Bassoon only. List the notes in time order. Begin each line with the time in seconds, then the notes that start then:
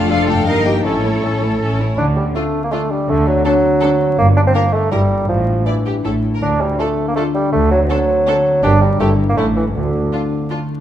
1.98 D4
2.16 G3
2.35 A3
2.64 A#3
2.72 A3
2.90 G3
3.09 A3
3.27 F#3
3.45 F#3
4.18 A#3
4.36 D4
4.47 C4
4.55 A#3
4.73 A3
4.92 G3
5.29 F3
5.66 E3
6.42 D4
6.61 G3
6.79 A3
7.08 A#3
7.15 A3
7.34 G3
7.52 A3
7.71 F#3
7.90 F#3
8.63 D4
8.81 G3
9.00 A3
9.29 A#3
9.37 A3
9.56 E3
9.76 D3